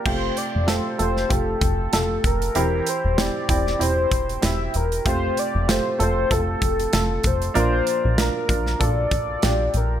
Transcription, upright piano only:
X:1
M:4/4
L:1/8
Q:"Swing 16ths" 1/4=96
K:F
V:1 name="Upright piano"
[A,FG]2 [A,FA] [A,FA] [A,FG]2 [A,FA]2 | [CEG]2 [CEG] [CEG] [CEG]2 [CEG]2 | [A,FG]2 [A,FG] [A,FA] [A,FA]2 [A,FA]2 | [DFB]2 [DFB] [DFB] [DFA]2 [DFG]2 |]
V:2 name="Upright piano" clef=bass
C,3 z4 z | E,3 z4 z | C,3 z4 z | [B,,F,]3 z4 z |]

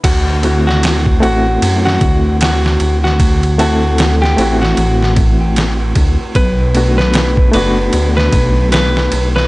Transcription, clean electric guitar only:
X:1
M:4/4
L:1/16
Q:"Swing 16ths" 1/4=76
K:Dmix
V:1 name="Clean electric guitar"
F3 F3 F3 F3 F3 F- | F2 F3 G2 F3 z6 | B3 B3 B3 B3 B3 B |]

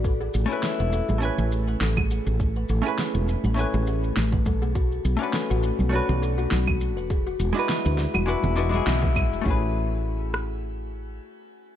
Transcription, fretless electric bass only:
X:1
M:4/4
L:1/16
Q:"Swing 16ths" 1/4=102
K:A
V:1 name="Fretless electric bass" clef=bass
A,,,2 A,,, z2 E,,, z A,,, z A,,,3 A,,,3 A,,,- | A,,,2 A,,, z2 E,,, z A,,, z A,,,3 A,,,3 B,,,- | B,,,2 B,,, z2 A,,, z B,,, z B,,,3 B,,,3 E,,,- | E,,,2 E,,, z2 D,, z E,,, z E,,,3 B,,,3 E,,, |
A,,,12 z4 |]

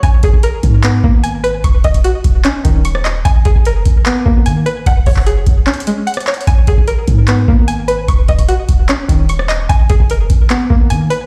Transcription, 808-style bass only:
X:1
M:4/4
L:1/8
Q:1/4=149
K:G#m
V:1 name="808-style bass" clef=bass
G,,, G,,, z G,,2 G,,,3 | D,,, D,,, z D,,, z D,,,3 | G,,, G,,, F,,, G,,, z G,,, D, z | F,,, F,,,2 F,,, z4 |
G,,, G,,, z G,,2 G,,,3 | D,,, D,,, z D,,, z D,,,3 | G,,, G,,, F,,, G,,, z G,,, D, z |]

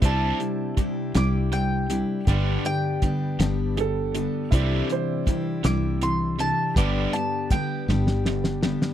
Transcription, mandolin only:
X:1
M:6/8
L:1/8
Q:3/8=53
K:C
V:1 name="Mandolin"
a3 d' g2- | g g4- g- | g z2 d' c' a | d' a g4 |]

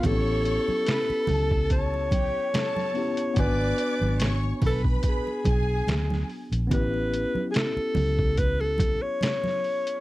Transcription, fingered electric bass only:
X:1
M:4/4
L:1/16
Q:"Swing 16ths" 1/4=72
K:Amix
V:1 name="Fingered electric bass" clef=bass
A,,,3 z3 C,,4- C,, z4 z | ^G,,,2 z G,,,3 B,,,2 z2 B,,,2 D,,2 z ^A,,, | A,,,3 z3 C,,4- C,, z4 z |]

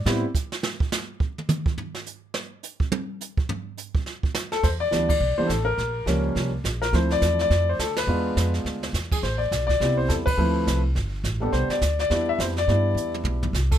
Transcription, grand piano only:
X:1
M:4/4
L:1/8
Q:"Swing" 1/4=209
K:Am
V:1 name="Grand piano"
z8 | z8 | z8 | z6 z A |
c d2 d2 c A _B- | _B3 z4 B | c d2 d2 c A B- | B3 z4 ^G |
c d2 d2 c A B- | B3 z4 A | c d2 d2 e c d- | d3 z4 A |]
V:2 name="Grand piano"
[G,B,CE] z6 z | z8 | z8 | z8 |
z2 [E,G,B,D] z2 [E,G,B,D] z2 | z2 [F,G,_B,_D]3 z3 | [F,A,CE]4- [F,A,CE] z3 | [^G,B,DF]4- [G,B,DF] z3 |
z4 [G,B,CE]3 z | [F,A,CE]3 z4 [G,B,DG]- | [G,B,DG]2 z2 [G,B,DE]3 z | [G,B,DE]4- [G,B,DE] z3 |]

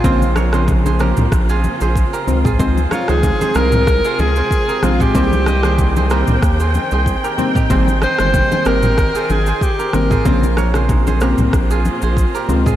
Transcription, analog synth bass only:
X:1
M:4/4
L:1/16
Q:"Swing 16ths" 1/4=94
K:Bbdor
V:1 name="Analog synth bass" clef=bass
B,,,6- B,,, C,, B,,,3 B,,,2 z D,,2- | D,,3 D,,2 z C,,4 D,,2 z2 B,,,2 | C,,6- C,, C,, E,,3 C,,2 z3 | A,,,3 G,,,2 z A,,,4 A,,,2 z2 A,,,2 |
B,,,6- B,,, C,, B,,,3 B,,,2 z D,,2 |]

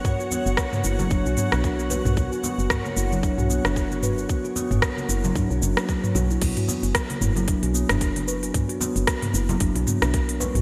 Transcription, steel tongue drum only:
X:1
M:4/4
L:1/16
Q:"Swing 16ths" 1/4=113
K:Bm
V:1 name="Steel tongue drum"
B, F B, F ^A ^A, E F, D F B, D A B, B F | B, F B, F ^A ^A, E F, D F B, D A B, B F | B, F B, F ^A ^A, E F, D F C A, F, B F E | B, F B, F ^A ^A, E F, D F B, D A B, B F |
B, F B, F ^A ^A, E F, D F B, D A B, B F |]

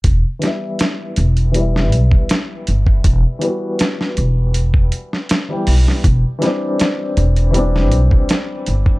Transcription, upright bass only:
X:1
M:4/4
L:1/8
Q:1/4=80
K:Em
V:1 name="Upright bass" clef=bass
E,,, z2 E,,,2 B,,, z G,,, | E,,, z2 E,,,2 z2 B,,, | E,,, z2 E,,,2 B,,, z G,,, |]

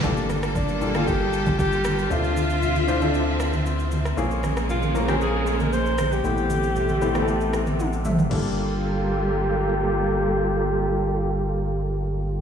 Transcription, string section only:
X:1
M:4/4
L:1/8
Q:1/4=116
K:Gdor
V:1 name="String section"
[G,B,FA]8 | [D,Ce]8 | [_D,_A,B,]8 | [C,G,A,]8 |
[G,B,FA]8- | [G,B,FA]8 |]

